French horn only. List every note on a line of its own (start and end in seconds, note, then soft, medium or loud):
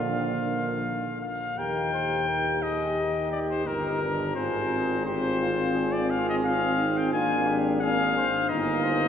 0.00 1.21 A#3 medium
1.57 3.63 G4 soft
3.67 4.37 G4 soft
4.36 5.05 F4 medium
5.06 6.42 F4 medium
6.43 6.77 F4 medium
6.78 7.15 D#4 medium
7.13 7.81 D4 medium
7.82 8.25 D4 medium
8.50 9.08 D#4 medium